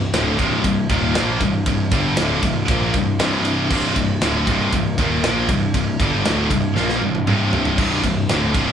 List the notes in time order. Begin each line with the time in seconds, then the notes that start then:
Already playing: C1
0.13 D1 D2 A2 D3, snare, ride
0.38 C1 C2 G2 C3, kick, ride
0.64 C1 C2 G2, kick, ride
0.89 D#1 D#2 A#2 D#3, kick, ride
1.15 A#1 A#2 F3 A#3, snare, ride
1.40 C1 C2 G2, kick, ride
1.66 C1 C2 G2, kick, ride
1.91 G1 G2 D3 G3, kick, ride
2.17 D1 D2 A2 D3, snare, ride
2.43 C1 C2 G2, kick, ride
2.68 A#1 A#2 F3 A#3, kick, ride
2.94 C1 C2 G2, kick, ride
3.19 C1 C2 G2 C3, snare, ride
3.45 ride
3.70 C1 C2 G2 C3, kick, crash
3.95 C1 C2 G2, kick, ride
4.21 D1 D2 A2 D3, snare, ride
4.47 C1 C2 G2 C3, kick, ride
4.73 C1 C2 G2, kick, ride
4.98 D#1 D#2 A#2 D#3, kick, ride
5.24 A#1 A#2 F3 A#3, snare, ride
5.49 C1 C2 G2, kick, ride
5.74 C1 C2 G2, kick, ride
5.99 G1 G2 D3 G3, kick, ride
6.25 D1 D2 A2 D3, snare, ride
6.50 C1 C2 G2, kick, ride
6.76 A#1 A#2 F3 A#3, snare
6.89 snare
7.02 C1 C2 G2
7.15 high tom
7.27 C1 C2 G2 C3, mid tom
7.53 floor tom
7.65 floor tom
7.78 C1 C2 G2 C3, kick, crash
8.04 C1 C2 G2, kick, ride
8.28 D1 D2 A2 D3, snare, ride
8.54 C1 C2 G2 C3, kick, ride